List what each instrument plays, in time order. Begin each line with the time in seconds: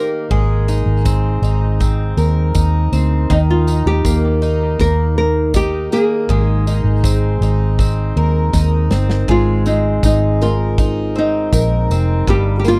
Already playing: twelve-string acoustic guitar D#3 A#3 D#4 G4, nylon-string guitar A#4
0.31 fingered electric bass G#1, twelve-string acoustic guitar G#3, kick
0.68 twelve-string acoustic guitar D#4, tambourine
0.86 fingered electric bass G#1
1.05 twelve-string acoustic guitar C4, kick, tambourine
1.42 fingered electric bass G#1, twelve-string acoustic guitar D#4, tambourine
1.80 twelve-string acoustic guitar C4, kick, tambourine
2.17 fingered electric bass D#2, twelve-string acoustic guitar A#4, tambourine
2.55 fingered electric bass D#2, twelve-string acoustic guitar D#4, kick, tambourine
2.92 fingered electric bass D2, twelve-string acoustic guitar C4, tambourine
3.30 fingered electric bass D#2, twelve-string acoustic guitar D#3, nylon-string guitar D#4, kick, tambourine
3.50 nylon-string guitar F4
3.67 twelve-string acoustic guitar D#4, tambourine
3.86 fingered electric bass D#2, nylon-string guitar G4
4.05 fingered electric bass D#2, twelve-string acoustic guitar A#3, kick, tambourine
4.42 twelve-string acoustic guitar D#4, tambourine
4.79 fingered electric bass D#2, twelve-string acoustic guitar A#3, nylon-string guitar A#4, kick, tambourine
5.18 nylon-string guitar A#4
5.54 twelve-string acoustic guitar D#4, nylon-string guitar G4, kick, tambourine
5.92 twelve-string acoustic guitar A#3, nylon-string guitar G#4, tambourine
6.29 fingered electric bass G#1, twelve-string acoustic guitar G#3, kick
6.67 twelve-string acoustic guitar D#4, tambourine
6.84 fingered electric bass G#1
7.04 twelve-string acoustic guitar C4, kick, tambourine
7.41 fingered electric bass G#1, twelve-string acoustic guitar D#4, tambourine
7.79 twelve-string acoustic guitar C4, kick, tambourine
8.16 fingered electric bass D#2, twelve-string acoustic guitar A#4
8.53 fingered electric bass D#2, twelve-string acoustic guitar D#4, kick, snare, tambourine
8.90 fingered electric bass G1, twelve-string acoustic guitar C4, snare, tambourine
9.10 snare
9.28 fingered electric bass G#1, twelve-string acoustic guitar G#3, nylon-string guitar F4, kick
9.66 twelve-string acoustic guitar C4, nylon-string guitar D#4, tambourine
10.03 fingered electric bass G#1, twelve-string acoustic guitar D#4, nylon-string guitar D#4, kick, tambourine
10.41 nylon-string guitar F4, twelve-string acoustic guitar A#4, tambourine
10.78 twelve-string acoustic guitar D#4, kick, tambourine
11.15 twelve-string acoustic guitar C4, nylon-string guitar D#4
11.53 fingered electric bass A#1, twelve-string acoustic guitar A#4, kick, tambourine
11.90 fingered electric bass F1, twelve-string acoustic guitar C4, tambourine
12.27 fingered electric bass G1, twelve-string acoustic guitar G2, nylon-string guitar G4, kick, tambourine
12.59 nylon-string guitar G4
12.64 twelve-string acoustic guitar A#3, nylon-string guitar F4, tambourine